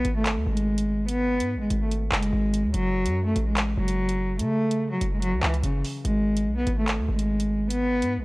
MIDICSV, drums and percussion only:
0, 0, Header, 1, 2, 480
1, 0, Start_track
1, 0, Tempo, 413793
1, 1257, Time_signature, 4, 2, 24, 8
1, 9568, End_track
2, 0, Start_track
2, 0, Title_t, "Drums"
2, 56, Note_on_c, 9, 42, 75
2, 172, Note_off_c, 9, 42, 0
2, 297, Note_on_c, 9, 39, 107
2, 300, Note_on_c, 9, 42, 70
2, 413, Note_off_c, 9, 39, 0
2, 416, Note_off_c, 9, 42, 0
2, 660, Note_on_c, 9, 42, 78
2, 776, Note_off_c, 9, 42, 0
2, 903, Note_on_c, 9, 42, 77
2, 1019, Note_off_c, 9, 42, 0
2, 1258, Note_on_c, 9, 42, 88
2, 1374, Note_off_c, 9, 42, 0
2, 1626, Note_on_c, 9, 42, 82
2, 1742, Note_off_c, 9, 42, 0
2, 1976, Note_on_c, 9, 42, 75
2, 2092, Note_off_c, 9, 42, 0
2, 2220, Note_on_c, 9, 42, 77
2, 2336, Note_off_c, 9, 42, 0
2, 2458, Note_on_c, 9, 39, 116
2, 2574, Note_off_c, 9, 39, 0
2, 2581, Note_on_c, 9, 42, 69
2, 2697, Note_off_c, 9, 42, 0
2, 2942, Note_on_c, 9, 42, 79
2, 3058, Note_off_c, 9, 42, 0
2, 3178, Note_on_c, 9, 42, 91
2, 3294, Note_off_c, 9, 42, 0
2, 3546, Note_on_c, 9, 42, 82
2, 3662, Note_off_c, 9, 42, 0
2, 3896, Note_on_c, 9, 42, 74
2, 4012, Note_off_c, 9, 42, 0
2, 4137, Note_on_c, 9, 39, 109
2, 4140, Note_on_c, 9, 42, 72
2, 4253, Note_off_c, 9, 39, 0
2, 4256, Note_off_c, 9, 42, 0
2, 4500, Note_on_c, 9, 42, 78
2, 4616, Note_off_c, 9, 42, 0
2, 4742, Note_on_c, 9, 42, 78
2, 4858, Note_off_c, 9, 42, 0
2, 5097, Note_on_c, 9, 42, 88
2, 5213, Note_off_c, 9, 42, 0
2, 5466, Note_on_c, 9, 42, 82
2, 5582, Note_off_c, 9, 42, 0
2, 5815, Note_on_c, 9, 42, 76
2, 5931, Note_off_c, 9, 42, 0
2, 6060, Note_on_c, 9, 42, 76
2, 6176, Note_off_c, 9, 42, 0
2, 6298, Note_on_c, 9, 39, 118
2, 6414, Note_off_c, 9, 39, 0
2, 6425, Note_on_c, 9, 42, 45
2, 6538, Note_off_c, 9, 42, 0
2, 6538, Note_on_c, 9, 42, 76
2, 6654, Note_off_c, 9, 42, 0
2, 6782, Note_on_c, 9, 46, 55
2, 6898, Note_off_c, 9, 46, 0
2, 7018, Note_on_c, 9, 42, 88
2, 7134, Note_off_c, 9, 42, 0
2, 7387, Note_on_c, 9, 42, 82
2, 7503, Note_off_c, 9, 42, 0
2, 7736, Note_on_c, 9, 42, 77
2, 7852, Note_off_c, 9, 42, 0
2, 7977, Note_on_c, 9, 39, 109
2, 7980, Note_on_c, 9, 42, 70
2, 8093, Note_off_c, 9, 39, 0
2, 8096, Note_off_c, 9, 42, 0
2, 8340, Note_on_c, 9, 42, 77
2, 8456, Note_off_c, 9, 42, 0
2, 8582, Note_on_c, 9, 42, 77
2, 8698, Note_off_c, 9, 42, 0
2, 8937, Note_on_c, 9, 42, 88
2, 9053, Note_off_c, 9, 42, 0
2, 9306, Note_on_c, 9, 42, 83
2, 9422, Note_off_c, 9, 42, 0
2, 9568, End_track
0, 0, End_of_file